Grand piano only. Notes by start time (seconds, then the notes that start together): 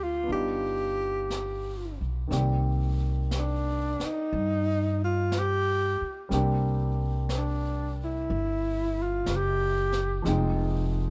Already playing: G#3 C4 D4 F4
0.23 B3 D4
0.31 D#4 F4
2.27 D#3 A#3 C4
2.32 G4 D5
6.29 G3 A#3 C4 D4
6.34 G4
10.22 F3 G#3 C4 D#4
10.28 G5